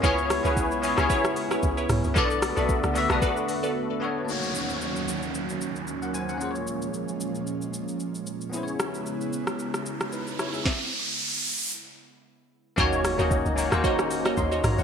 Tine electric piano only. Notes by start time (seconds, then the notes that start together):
Already playing: F4
0.02 B3 C#4 E4 G#4 C#5
0.43 B3 C#4 E4 G#4 B4
0.81 B3 C#4 E4 G#4 C#5
0.96 B3 C#4 E4 G#4 C#5
2.14 B3 D4 F#4 A4 D5
2.55 B3 D4 F#4 A4 E5
2.94 B3 D4 F#4 A4 E5
3.08 B3 D4 F#4 A4 B4
4.00 B3 D4 F#4 A4 C#5
4.25 A#3 C#4 D#4
4.30 F#4 C#5
6.02 A#4 F#5
6.14 C5 G#5
6.29 A#4 F#5
6.37 A#3 C#4 F4
6.43 G#4 C5
6.51 C#5
8.50 B3 C#4 E4
8.55 G#4 C5
8.63 C#5
10.13 D#4 B4
10.39 E4 C#5
10.54 G#4 E5
12.76 A#3 C#4 D#4 F#4 C#5
13.17 A#3 C#4 D#4 F#4 D#5
13.56 A#3 C#4 D#4 F#4 C#5
13.70 A#3 C#4 D#4 F#4 C5
14.37 D#5 C6
14.64 C#5 A#5
14.78 A#4 F#5